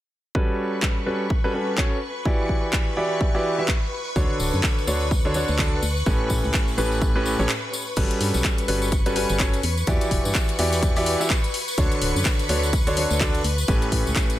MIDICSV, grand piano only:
0, 0, Header, 1, 2, 480
1, 0, Start_track
1, 0, Key_signature, 2, "major"
1, 0, Tempo, 476190
1, 353, Time_signature, 4, 2, 24, 8
1, 14506, End_track
2, 0, Start_track
2, 0, Title_t, "Grand piano"
2, 0, Program_c, 0, 0
2, 352, Note_on_c, 0, 55, 73
2, 352, Note_on_c, 0, 61, 65
2, 352, Note_on_c, 0, 66, 67
2, 352, Note_on_c, 0, 69, 66
2, 352, Note_on_c, 0, 71, 81
2, 1048, Note_off_c, 0, 55, 0
2, 1048, Note_off_c, 0, 69, 0
2, 1048, Note_off_c, 0, 71, 0
2, 1049, Note_off_c, 0, 61, 0
2, 1049, Note_off_c, 0, 66, 0
2, 1072, Note_on_c, 0, 55, 68
2, 1072, Note_on_c, 0, 61, 58
2, 1072, Note_on_c, 0, 66, 60
2, 1072, Note_on_c, 0, 69, 62
2, 1072, Note_on_c, 0, 71, 73
2, 1260, Note_off_c, 0, 55, 0
2, 1260, Note_off_c, 0, 61, 0
2, 1260, Note_off_c, 0, 66, 0
2, 1260, Note_off_c, 0, 69, 0
2, 1260, Note_off_c, 0, 71, 0
2, 1453, Note_on_c, 0, 61, 71
2, 1453, Note_on_c, 0, 66, 72
2, 1453, Note_on_c, 0, 71, 93
2, 1454, Note_on_c, 0, 55, 78
2, 1454, Note_on_c, 0, 69, 76
2, 1537, Note_off_c, 0, 55, 0
2, 1537, Note_off_c, 0, 61, 0
2, 1537, Note_off_c, 0, 66, 0
2, 1537, Note_off_c, 0, 69, 0
2, 1537, Note_off_c, 0, 71, 0
2, 1552, Note_on_c, 0, 55, 69
2, 1552, Note_on_c, 0, 61, 64
2, 1552, Note_on_c, 0, 66, 62
2, 1552, Note_on_c, 0, 69, 59
2, 1552, Note_on_c, 0, 71, 72
2, 1769, Note_off_c, 0, 55, 0
2, 1769, Note_off_c, 0, 61, 0
2, 1769, Note_off_c, 0, 66, 0
2, 1769, Note_off_c, 0, 69, 0
2, 1769, Note_off_c, 0, 71, 0
2, 1793, Note_on_c, 0, 61, 71
2, 1793, Note_on_c, 0, 66, 69
2, 1793, Note_on_c, 0, 69, 62
2, 1793, Note_on_c, 0, 73, 82
2, 1981, Note_off_c, 0, 61, 0
2, 1981, Note_off_c, 0, 66, 0
2, 1981, Note_off_c, 0, 69, 0
2, 1981, Note_off_c, 0, 73, 0
2, 2272, Note_on_c, 0, 52, 82
2, 2272, Note_on_c, 0, 66, 75
2, 2272, Note_on_c, 0, 74, 88
2, 2273, Note_on_c, 0, 64, 74
2, 2273, Note_on_c, 0, 67, 70
2, 2968, Note_off_c, 0, 52, 0
2, 2969, Note_off_c, 0, 64, 0
2, 2969, Note_off_c, 0, 66, 0
2, 2969, Note_off_c, 0, 67, 0
2, 2969, Note_off_c, 0, 74, 0
2, 2992, Note_on_c, 0, 52, 77
2, 2992, Note_on_c, 0, 64, 71
2, 2992, Note_on_c, 0, 66, 70
2, 2992, Note_on_c, 0, 67, 73
2, 2992, Note_on_c, 0, 74, 86
2, 3339, Note_off_c, 0, 52, 0
2, 3339, Note_off_c, 0, 64, 0
2, 3339, Note_off_c, 0, 66, 0
2, 3339, Note_off_c, 0, 67, 0
2, 3339, Note_off_c, 0, 74, 0
2, 3372, Note_on_c, 0, 74, 99
2, 3373, Note_on_c, 0, 52, 92
2, 3373, Note_on_c, 0, 64, 82
2, 3373, Note_on_c, 0, 66, 86
2, 3373, Note_on_c, 0, 67, 80
2, 3579, Note_off_c, 0, 52, 0
2, 3579, Note_off_c, 0, 64, 0
2, 3579, Note_off_c, 0, 66, 0
2, 3579, Note_off_c, 0, 67, 0
2, 3579, Note_off_c, 0, 74, 0
2, 3612, Note_on_c, 0, 64, 74
2, 3612, Note_on_c, 0, 67, 67
2, 3612, Note_on_c, 0, 76, 83
2, 3613, Note_on_c, 0, 52, 79
2, 3613, Note_on_c, 0, 66, 71
2, 3704, Note_off_c, 0, 52, 0
2, 3704, Note_off_c, 0, 64, 0
2, 3704, Note_off_c, 0, 66, 0
2, 3704, Note_off_c, 0, 67, 0
2, 3704, Note_off_c, 0, 76, 0
2, 4192, Note_on_c, 0, 50, 76
2, 4192, Note_on_c, 0, 62, 71
2, 4192, Note_on_c, 0, 66, 69
2, 4192, Note_on_c, 0, 69, 69
2, 4192, Note_on_c, 0, 73, 82
2, 4888, Note_off_c, 0, 66, 0
2, 4888, Note_off_c, 0, 69, 0
2, 4889, Note_off_c, 0, 50, 0
2, 4889, Note_off_c, 0, 62, 0
2, 4889, Note_off_c, 0, 73, 0
2, 4911, Note_on_c, 0, 62, 65
2, 4911, Note_on_c, 0, 69, 64
2, 4912, Note_on_c, 0, 50, 69
2, 4912, Note_on_c, 0, 66, 67
2, 4912, Note_on_c, 0, 73, 79
2, 5100, Note_off_c, 0, 50, 0
2, 5100, Note_off_c, 0, 62, 0
2, 5100, Note_off_c, 0, 66, 0
2, 5100, Note_off_c, 0, 69, 0
2, 5100, Note_off_c, 0, 73, 0
2, 5293, Note_on_c, 0, 50, 83
2, 5293, Note_on_c, 0, 62, 78
2, 5293, Note_on_c, 0, 66, 80
2, 5293, Note_on_c, 0, 69, 77
2, 5293, Note_on_c, 0, 73, 91
2, 5377, Note_off_c, 0, 50, 0
2, 5377, Note_off_c, 0, 62, 0
2, 5377, Note_off_c, 0, 66, 0
2, 5377, Note_off_c, 0, 69, 0
2, 5377, Note_off_c, 0, 73, 0
2, 5392, Note_on_c, 0, 50, 71
2, 5392, Note_on_c, 0, 62, 67
2, 5392, Note_on_c, 0, 66, 64
2, 5392, Note_on_c, 0, 69, 63
2, 5392, Note_on_c, 0, 73, 81
2, 5608, Note_off_c, 0, 66, 0
2, 5608, Note_off_c, 0, 73, 0
2, 5609, Note_off_c, 0, 50, 0
2, 5609, Note_off_c, 0, 62, 0
2, 5609, Note_off_c, 0, 69, 0
2, 5632, Note_on_c, 0, 50, 75
2, 5632, Note_on_c, 0, 62, 68
2, 5633, Note_on_c, 0, 66, 67
2, 5633, Note_on_c, 0, 69, 64
2, 5633, Note_on_c, 0, 74, 84
2, 5820, Note_off_c, 0, 50, 0
2, 5820, Note_off_c, 0, 62, 0
2, 5821, Note_off_c, 0, 66, 0
2, 5821, Note_off_c, 0, 69, 0
2, 5821, Note_off_c, 0, 74, 0
2, 6112, Note_on_c, 0, 45, 84
2, 6112, Note_on_c, 0, 61, 79
2, 6112, Note_on_c, 0, 67, 71
2, 6112, Note_on_c, 0, 69, 74
2, 6112, Note_on_c, 0, 71, 91
2, 6808, Note_off_c, 0, 45, 0
2, 6808, Note_off_c, 0, 61, 0
2, 6808, Note_off_c, 0, 67, 0
2, 6808, Note_off_c, 0, 69, 0
2, 6808, Note_off_c, 0, 71, 0
2, 6831, Note_on_c, 0, 45, 78
2, 6831, Note_on_c, 0, 61, 73
2, 6831, Note_on_c, 0, 67, 72
2, 6831, Note_on_c, 0, 69, 70
2, 6831, Note_on_c, 0, 71, 90
2, 7179, Note_off_c, 0, 45, 0
2, 7179, Note_off_c, 0, 61, 0
2, 7179, Note_off_c, 0, 67, 0
2, 7179, Note_off_c, 0, 69, 0
2, 7179, Note_off_c, 0, 71, 0
2, 7212, Note_on_c, 0, 45, 93
2, 7212, Note_on_c, 0, 61, 88
2, 7212, Note_on_c, 0, 67, 85
2, 7212, Note_on_c, 0, 69, 83
2, 7212, Note_on_c, 0, 71, 99
2, 7419, Note_off_c, 0, 45, 0
2, 7419, Note_off_c, 0, 61, 0
2, 7419, Note_off_c, 0, 67, 0
2, 7419, Note_off_c, 0, 69, 0
2, 7419, Note_off_c, 0, 71, 0
2, 7451, Note_on_c, 0, 61, 68
2, 7452, Note_on_c, 0, 45, 80
2, 7452, Note_on_c, 0, 67, 73
2, 7452, Note_on_c, 0, 69, 72
2, 7452, Note_on_c, 0, 73, 89
2, 7544, Note_off_c, 0, 45, 0
2, 7544, Note_off_c, 0, 61, 0
2, 7544, Note_off_c, 0, 67, 0
2, 7544, Note_off_c, 0, 69, 0
2, 7544, Note_off_c, 0, 73, 0
2, 8032, Note_on_c, 0, 55, 82
2, 8032, Note_on_c, 0, 61, 70
2, 8032, Note_on_c, 0, 66, 71
2, 8032, Note_on_c, 0, 69, 72
2, 8032, Note_on_c, 0, 71, 86
2, 8728, Note_off_c, 0, 55, 0
2, 8728, Note_off_c, 0, 61, 0
2, 8728, Note_off_c, 0, 66, 0
2, 8728, Note_off_c, 0, 69, 0
2, 8728, Note_off_c, 0, 71, 0
2, 8751, Note_on_c, 0, 55, 68
2, 8751, Note_on_c, 0, 61, 63
2, 8751, Note_on_c, 0, 66, 65
2, 8751, Note_on_c, 0, 69, 64
2, 8752, Note_on_c, 0, 71, 80
2, 8940, Note_off_c, 0, 55, 0
2, 8940, Note_off_c, 0, 61, 0
2, 8940, Note_off_c, 0, 66, 0
2, 8940, Note_off_c, 0, 69, 0
2, 8940, Note_off_c, 0, 71, 0
2, 9132, Note_on_c, 0, 71, 93
2, 9133, Note_on_c, 0, 55, 86
2, 9133, Note_on_c, 0, 61, 79
2, 9133, Note_on_c, 0, 66, 82
2, 9133, Note_on_c, 0, 69, 78
2, 9217, Note_off_c, 0, 55, 0
2, 9217, Note_off_c, 0, 61, 0
2, 9217, Note_off_c, 0, 66, 0
2, 9217, Note_off_c, 0, 69, 0
2, 9217, Note_off_c, 0, 71, 0
2, 9232, Note_on_c, 0, 55, 75
2, 9232, Note_on_c, 0, 66, 66
2, 9232, Note_on_c, 0, 69, 64
2, 9232, Note_on_c, 0, 71, 79
2, 9233, Note_on_c, 0, 61, 63
2, 9448, Note_off_c, 0, 66, 0
2, 9449, Note_off_c, 0, 55, 0
2, 9449, Note_off_c, 0, 61, 0
2, 9449, Note_off_c, 0, 69, 0
2, 9449, Note_off_c, 0, 71, 0
2, 9472, Note_on_c, 0, 61, 76
2, 9472, Note_on_c, 0, 69, 66
2, 9472, Note_on_c, 0, 73, 86
2, 9473, Note_on_c, 0, 66, 66
2, 9660, Note_off_c, 0, 61, 0
2, 9660, Note_off_c, 0, 69, 0
2, 9660, Note_off_c, 0, 73, 0
2, 9661, Note_off_c, 0, 66, 0
2, 9952, Note_on_c, 0, 52, 85
2, 9953, Note_on_c, 0, 64, 77
2, 9953, Note_on_c, 0, 66, 80
2, 9953, Note_on_c, 0, 67, 78
2, 9953, Note_on_c, 0, 74, 92
2, 10649, Note_off_c, 0, 52, 0
2, 10649, Note_off_c, 0, 64, 0
2, 10649, Note_off_c, 0, 66, 0
2, 10649, Note_off_c, 0, 67, 0
2, 10649, Note_off_c, 0, 74, 0
2, 10672, Note_on_c, 0, 52, 86
2, 10672, Note_on_c, 0, 64, 73
2, 10672, Note_on_c, 0, 66, 76
2, 10672, Note_on_c, 0, 67, 77
2, 10672, Note_on_c, 0, 74, 90
2, 11019, Note_off_c, 0, 52, 0
2, 11019, Note_off_c, 0, 64, 0
2, 11019, Note_off_c, 0, 66, 0
2, 11019, Note_off_c, 0, 67, 0
2, 11019, Note_off_c, 0, 74, 0
2, 11053, Note_on_c, 0, 52, 98
2, 11053, Note_on_c, 0, 67, 90
2, 11054, Note_on_c, 0, 64, 85
2, 11054, Note_on_c, 0, 66, 86
2, 11054, Note_on_c, 0, 74, 105
2, 11259, Note_off_c, 0, 52, 0
2, 11259, Note_off_c, 0, 67, 0
2, 11260, Note_off_c, 0, 64, 0
2, 11260, Note_off_c, 0, 66, 0
2, 11260, Note_off_c, 0, 74, 0
2, 11292, Note_on_c, 0, 52, 77
2, 11292, Note_on_c, 0, 64, 76
2, 11292, Note_on_c, 0, 66, 75
2, 11292, Note_on_c, 0, 76, 84
2, 11293, Note_on_c, 0, 67, 71
2, 11384, Note_off_c, 0, 52, 0
2, 11384, Note_off_c, 0, 64, 0
2, 11384, Note_off_c, 0, 66, 0
2, 11384, Note_off_c, 0, 67, 0
2, 11384, Note_off_c, 0, 76, 0
2, 11872, Note_on_c, 0, 50, 79
2, 11872, Note_on_c, 0, 62, 75
2, 11872, Note_on_c, 0, 66, 72
2, 11872, Note_on_c, 0, 69, 69
2, 11872, Note_on_c, 0, 73, 86
2, 12568, Note_off_c, 0, 50, 0
2, 12568, Note_off_c, 0, 66, 0
2, 12568, Note_off_c, 0, 69, 0
2, 12569, Note_off_c, 0, 62, 0
2, 12569, Note_off_c, 0, 73, 0
2, 12591, Note_on_c, 0, 50, 71
2, 12591, Note_on_c, 0, 62, 68
2, 12591, Note_on_c, 0, 66, 64
2, 12591, Note_on_c, 0, 69, 64
2, 12591, Note_on_c, 0, 73, 81
2, 12780, Note_off_c, 0, 50, 0
2, 12780, Note_off_c, 0, 62, 0
2, 12780, Note_off_c, 0, 66, 0
2, 12780, Note_off_c, 0, 69, 0
2, 12780, Note_off_c, 0, 73, 0
2, 12972, Note_on_c, 0, 50, 88
2, 12972, Note_on_c, 0, 62, 83
2, 12972, Note_on_c, 0, 66, 80
2, 12972, Note_on_c, 0, 69, 78
2, 12972, Note_on_c, 0, 73, 92
2, 13056, Note_off_c, 0, 50, 0
2, 13056, Note_off_c, 0, 66, 0
2, 13057, Note_off_c, 0, 62, 0
2, 13057, Note_off_c, 0, 69, 0
2, 13057, Note_off_c, 0, 73, 0
2, 13071, Note_on_c, 0, 50, 75
2, 13071, Note_on_c, 0, 66, 65
2, 13072, Note_on_c, 0, 62, 69
2, 13072, Note_on_c, 0, 69, 67
2, 13072, Note_on_c, 0, 73, 83
2, 13288, Note_off_c, 0, 50, 0
2, 13288, Note_off_c, 0, 62, 0
2, 13288, Note_off_c, 0, 66, 0
2, 13288, Note_off_c, 0, 69, 0
2, 13288, Note_off_c, 0, 73, 0
2, 13312, Note_on_c, 0, 50, 76
2, 13312, Note_on_c, 0, 62, 75
2, 13312, Note_on_c, 0, 66, 72
2, 13312, Note_on_c, 0, 69, 72
2, 13312, Note_on_c, 0, 74, 88
2, 13500, Note_off_c, 0, 50, 0
2, 13500, Note_off_c, 0, 62, 0
2, 13500, Note_off_c, 0, 66, 0
2, 13500, Note_off_c, 0, 69, 0
2, 13500, Note_off_c, 0, 74, 0
2, 13791, Note_on_c, 0, 71, 94
2, 13792, Note_on_c, 0, 45, 88
2, 13792, Note_on_c, 0, 61, 83
2, 13792, Note_on_c, 0, 67, 83
2, 13792, Note_on_c, 0, 69, 81
2, 14488, Note_off_c, 0, 45, 0
2, 14488, Note_off_c, 0, 61, 0
2, 14488, Note_off_c, 0, 67, 0
2, 14488, Note_off_c, 0, 69, 0
2, 14488, Note_off_c, 0, 71, 0
2, 14506, End_track
0, 0, End_of_file